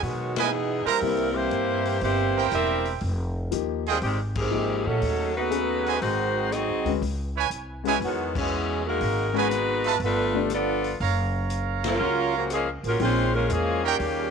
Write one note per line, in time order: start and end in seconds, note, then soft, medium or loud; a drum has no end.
0.03 0.83 B2 medium
0.03 0.37 D#3 medium
0.03 0.37 F#3 medium
0.03 0.38 G#3 medium
0.03 0.37 B3 medium
0.03 0.38 F#4 medium
0.03 kick soft
0.03 open hi-hat soft
0.35 0.86 B2 medium
0.35 0.88 E3 medium
0.35 0.86 G#3 medium
0.35 0.88 B3 medium
0.35 0.86 D#4 medium
0.35 0.88 D#4 medium
0.35 0.48 E4 medium
0.35 0.88 G#4 medium
0.35 0.48 B4 medium
0.35 0.48 D#5 medium
0.35 0.48 G#5 loud
0.35 snare medium
0.35 ride medium
0.85 1.32 E3 medium
0.85 1.32 G3 medium
0.85 1.37 G3 medium
0.85 1.36 A#3 medium
0.85 1.37 C4 medium
0.85 0.97 E4 medium
0.85 1.34 E4 medium
0.85 0.97 A#4 medium
0.85 1.37 A#4 medium
0.85 0.96 C5 medium
0.85 0.97 A#5 loud
0.85 muted upright bass stroke soft
0.85 open hi-hat soft
1.01 1.49 C2 medium
1.01 1.80 G3 medium
1.01 1.80 A#3 medium
1.01 1.80 C4 soft
1.01 1.80 E4 medium
1.01 kick soft
1.01 open hi-hat medium
1.33 2.00 E3 medium
1.33 1.99 G3 medium
1.33 2.01 A#3 medium
1.33 2.00 C4 medium
1.33 2.02 E4 medium
1.33 2.02 G4 medium
1.33 2.02 C5 loud
1.51 1.99 G2 medium
1.51 closed hi-hat medium
1.85 open hi-hat soft
2.00 2.49 G1 medium
2.00 2.48 E3 medium
2.00 2.48 G3 loud
2.00 2.49 A#3 medium
2.00 2.48 C4 medium
2.00 2.49 E4 medium
2.00 2.50 G4 medium
2.00 2.49 C5 loud
2.00 kick soft
2.00 open hi-hat soft
2.36 2.99 E4 medium
2.36 2.99 A#4 medium
2.36 2.99 C5 medium
2.36 2.99 G5 loud
2.50 2.98 E1 medium
2.50 2.91 G3 medium
2.50 2.91 A#3 medium
2.50 2.90 E4 medium
2.50 cross-stick medium
2.50 closed hi-hat medium
2.54 2.93 C4 medium
2.54 2.93 G4 medium
2.54 2.93 A#4 medium
2.54 2.93 E5 loud
2.85 open hi-hat soft
3.01 3.48 F1 medium
3.01 kick soft
3.01 open hi-hat soft
3.51 3.99 D#2 medium
3.51 3.82 F3 medium
3.51 3.83 A#3 medium
3.51 3.83 D#4 medium
3.51 3.83 G4 medium
3.51 closed hi-hat medium
3.86 3.96 C3 medium
3.86 3.95 D#3 medium
3.86 3.96 G#3 medium
3.86 3.97 F4 medium
3.86 3.97 G#4 medium
3.86 3.97 D#5 medium
3.86 3.97 G5 loud
3.86 open hi-hat soft
3.91 3.97 D#3 medium
3.91 3.97 G3 medium
3.91 3.97 C4 medium
3.91 3.97 G#4 medium
4.02 4.82 G#1 loud
4.02 4.19 C3 medium
4.02 4.19 D#3 medium
4.02 4.20 D#3 medium
4.02 4.20 G3 medium
4.02 4.18 G#3 medium
4.02 4.19 C4 medium
4.02 4.19 G4 medium
4.02 kick soft
4.02 open hi-hat medium
4.35 4.84 C3 medium
4.35 4.83 D#3 medium
4.35 4.84 D#3 medium
4.35 4.84 G#3 medium
4.35 4.84 C4 medium
4.35 4.83 G4 medium
4.35 4.83 G#4 medium
4.35 kick loud
4.35 crash medium
4.51 5.01 F3 medium
4.51 5.02 A#3 medium
4.51 5.02 D#4 medium
4.51 5.02 G4 medium
4.86 5.01 A#2 medium
4.86 5.36 C#3 medium
4.86 5.36 F#3 medium
4.86 5.37 A3 medium
4.86 5.36 C#4 medium
4.86 5.36 D#4 medium
4.86 5.36 A4 medium
5.02 5.98 D#2 medium
5.02 kick soft
5.02 open hi-hat medium
5.36 5.98 C#3 medium
5.36 5.98 F#3 medium
5.36 5.98 A3 medium
5.36 5.98 B3 medium
5.36 5.98 D#4 medium
5.36 5.98 F#4 medium
5.36 5.98 B4 loud
5.51 6.01 C#4 medium
5.51 6.01 F#4 medium
5.51 6.01 G#4 medium
5.51 6.02 B4 medium
5.51 closed hi-hat medium
5.86 5.96 F#4 medium
5.86 5.97 C5 medium
5.86 5.96 D#5 medium
5.86 5.97 G#5 loud
5.86 open hi-hat soft
6.02 6.64 G#1 medium
6.02 6.52 D#3 medium
6.02 6.50 F#3 medium
6.02 6.52 G#3 medium
6.02 6.50 C4 medium
6.02 6.52 D#4 medium
6.02 6.51 F#4 medium
6.02 6.52 C5 loud
6.02 kick soft
6.02 open hi-hat soft
6.51 6.93 F#3 medium
6.51 6.94 C4 medium
6.51 6.94 D#4 medium
6.51 6.94 F#4 medium
6.51 6.94 G#4 medium
6.51 6.94 D#5 medium
6.51 cross-stick medium
6.51 closed hi-hat medium
6.68 6.84 C2 medium
6.85 7.00 D2 medium
6.85 7.00 G#3 medium
6.85 7.00 C#4 medium
6.85 7.00 F#4 soft
6.85 7.01 B4 medium
6.85 open hi-hat soft
7.02 7.48 C#2 medium
7.02 kick soft
7.02 open hi-hat medium
7.36 7.46 E4 medium
7.36 7.46 B4 medium
7.36 7.47 C#5 medium
7.36 7.46 G#5 loud
7.50 7.97 C2 medium
7.50 closed hi-hat medium
7.84 7.94 E3 medium
7.84 7.99 G#3 medium
7.84 7.94 G#3 medium
7.84 7.99 C#4 medium
7.84 7.96 E4 loud
7.84 7.99 F#4 medium
7.84 7.96 B4 medium
7.84 8.00 B4 medium
7.84 7.96 C#5 medium
7.84 7.96 G#5 loud
7.84 open hi-hat soft
7.88 7.94 B2 medium
7.88 7.95 E3 medium
7.88 7.95 B3 medium
7.88 7.95 C#4 medium
7.88 7.95 G#4 medium
8.00 8.97 E2 loud
8.00 8.34 F#3 medium
8.00 8.34 F#4 medium
8.00 kick soft
8.00 open hi-hat medium
8.05 8.35 D#3 medium
8.05 8.35 G#3 medium
8.05 8.35 B3 medium
8.35 8.83 B2 medium
8.35 8.83 E3 medium
8.35 8.83 G#3 medium
8.35 8.83 B3 medium
8.35 8.83 C#4 medium
8.35 8.83 G#4 medium
8.35 kick loud
8.35 crash medium
8.85 9.32 D#3 medium
8.85 9.32 F#3 medium
8.85 9.33 G#3 medium
8.85 9.32 A#3 medium
8.85 9.33 D#4 medium
8.85 9.33 F#4 medium
8.85 9.33 A#4 medium
9.01 9.97 G#1 loud
9.01 kick soft
9.01 open hi-hat medium
9.33 9.98 F#3 medium
9.33 9.48 G#3 medium
9.33 9.49 C#4 medium
9.33 9.49 F#4 medium
9.33 9.45 F#4 medium
9.33 9.49 B4 medium
9.33 9.46 B4 medium
9.33 9.46 D#5 medium
9.33 9.46 G#5 medium
9.38 9.98 D#3 medium
9.38 9.98 G#3 medium
9.38 9.98 B3 medium
9.38 9.99 D#4 medium
9.38 9.99 F#4 medium
9.38 9.99 B4 loud
9.51 closed hi-hat medium
9.84 9.95 F4 loud
9.84 9.95 B4 medium
9.84 9.95 E5 medium
9.84 9.95 A5 loud
9.84 open hi-hat soft
9.99 10.96 G1 medium
9.99 10.48 D3 medium
9.99 10.48 F3 medium
9.99 10.48 B3 loud
9.99 kick soft
9.99 open hi-hat medium
10.04 10.49 A3 medium
10.04 10.49 D4 medium
10.04 10.49 F4 medium
10.04 10.49 B4 loud
10.34 10.49 A3 medium
10.34 10.49 D4 medium
10.34 10.49 G4 medium
10.34 10.50 D5 medium
10.50 10.93 F3 medium
10.50 10.93 B3 medium
10.50 10.94 B3 medium
10.50 10.93 D4 medium
10.50 10.94 F4 medium
10.50 10.94 A4 medium
10.50 10.94 D5 loud
10.50 cross-stick medium
10.50 closed hi-hat medium
10.84 open hi-hat soft
11.00 11.96 F#1 medium
11.00 12.40 A#4 medium
11.00 12.40 C#5 medium
11.00 12.41 F5 medium
11.00 12.40 A#5 medium
11.00 kick soft
11.00 open hi-hat medium
11.50 closed hi-hat medium
11.84 12.32 C#3 medium
11.84 12.33 F#3 medium
11.84 12.32 A#3 medium
11.84 12.32 C#4 medium
11.84 12.31 F4 medium
11.84 12.33 F4 medium
11.84 12.32 A#4 loud
11.84 snare medium
11.84 ride medium
12.00 12.80 C#2 medium
12.35 12.50 A#2 medium
12.35 12.51 C#3 medium
12.35 12.52 C#3 medium
12.35 12.52 F3 medium
12.35 12.50 F#3 medium
12.35 12.52 A#3 medium
12.35 12.52 F#4 medium
12.50 12.66 G#3 medium
12.50 cross-stick medium
12.50 closed hi-hat medium
12.54 12.69 F3 medium
12.54 12.69 A#3 medium
12.54 12.69 C#4 medium
12.54 12.69 G#4 medium
12.83 12.99 A1 medium
12.83 12.99 C#3 medium
12.83 12.99 F3 medium
12.83 12.99 A#3 medium
12.83 open hi-hat soft
12.88 13.01 F#3 medium
12.88 13.01 C#4 medium
12.88 13.01 F4 medium
12.88 13.01 A#4 medium
12.99 13.46 A#1 loud
12.99 13.77 F3 medium
12.99 13.33 G#3 loud
12.99 13.77 A#3 medium
12.99 13.32 C4 medium
12.99 13.33 C#4 medium
12.99 13.78 D#4 medium
12.99 13.33 F4 loud
12.99 13.78 G#4 medium
12.99 13.33 C5 loud
12.99 kick soft
12.99 open hi-hat medium
13.34 13.48 C#3 medium
13.34 13.48 F3 medium
13.34 13.50 G#3 medium
13.34 13.49 A#3 medium
13.34 13.50 C#4 medium
13.34 13.50 F4 medium
13.34 13.50 A#4 loud
13.49 13.96 E2 medium
13.49 13.83 C#3 medium
13.49 13.84 F3 medium
13.49 13.85 F3 medium
13.49 13.84 G#3 medium
13.49 13.84 A#3 medium
13.49 13.84 C#4 medium
13.49 13.85 G#4 loud
13.49 closed hi-hat medium
13.84 14.30 A#2 medium
13.84 14.30 C#3 medium
13.84 14.30 D#3 medium
13.84 14.30 G3 medium
13.84 14.30 A#3 medium
13.84 14.30 C#4 medium
13.84 13.95 D#4 loud
13.84 14.30 G4 medium
13.84 13.95 A#4 medium
13.84 13.95 C#5 medium
13.84 13.95 G5 loud
13.99 14.30 D#2 medium
13.99 kick soft
13.99 open hi-hat medium